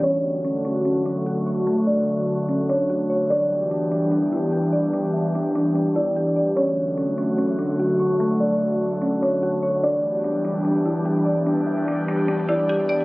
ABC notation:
X:1
M:4/4
L:1/8
Q:1/4=147
K:D
V:1 name="Kalimba"
c8 | z d4 c3 | d8 | z e4 d3 |
c8 | z d4 c3 | d8 | z e4 d3 |]
V:2 name="Synth pluck"
C2 C C C D F c' | A,4 C D F c | D2 D D D E G d | D2 D D D E G d |
C2 C C C D F c' | A,4 C D F c | D2 D D D E G d | D2 D D D E G d |]
V:3 name="Analog synth pad"
[D,F,A,F]8- | [D,F,A,F]8 | [E,G,B,DG]8- | [E,G,B,DG]8 |
[D,F,A,F]8- | [D,F,A,F]8 | [E,G,B,DG]8- | [E,G,B,DG]8 |]